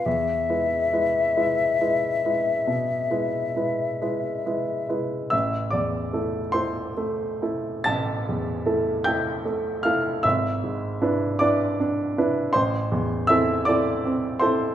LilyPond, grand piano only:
\new Staff \with { instrumentName = "Grand piano" } { \time 12/8 \key e \phrygian \tempo 4. = 49 << { r1. | <e'' e'''>8 <d'' d'''>4 <c'' c'''>4. <a'' a'''>4. <g'' g'''>4 <f'' f'''>8 | <e'' e'''>4. <d'' d'''>4. <c'' c'''>4 <e'' e'''>8 <d'' d'''>4 <c'' c'''>8 | } \\ { e,8 <gis e' b'>8 <gis e' b'>8 <gis e' b'>8 <gis e' b'>8 <gis e' b'>8 b,8 <gis e' b'>8 <gis e' b'>8 <gis e' b'>8 <gis e' b'>8 <gis e' b'>8 | a,,8 e,8 <a e' a'>8 <a e' a'>8 a8 <a e' a'>8 a,,8 e,8 <a e' a'>8 <a e' a'>8 a8 <a e' a'>8 | gis,,8 gis,8 <d' e' b'>8 <d' e' b'>8 d'8 <d' e' b'>8 a,,8 e,8 <c' e' a'>8 <c' e' a'>8 c'8 <c' e' a'>8 | } >> }